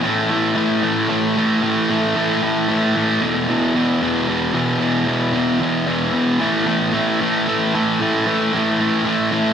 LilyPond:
\new Staff \with { instrumentName = "Distorted electric guitar" } { \clef bass \time 3/4 \key a \dorian \tempo 4 = 113 <a, e a>8 <a, e a>8 <a, e a>8 <a, e a>8 <a, e a>8 <a, e a>8 | <a, e a>8 <a, e a>8 <a, e a>8 <a, e a>8 <a, e a>8 <a, e a>8 | <e, b, e>8 <e, b, e>8 <e, b, e>8 <e, b, e>8 <e, b, e>8 <e, b, e>8 | <e, b, e>8 <e, b, e>8 <e, b, e>8 <e, b, e>8 <e, b, e>8 <e, b, e>8 |
<a, e a>8 <a, e a>8 <a, e a>8 <a, e a>8 <a, e a>8 <a, e a>8 | <a, e a>8 <a, e a>8 <a, e a>8 <a, e a>8 <a, e a>8 <a, e a>8 | }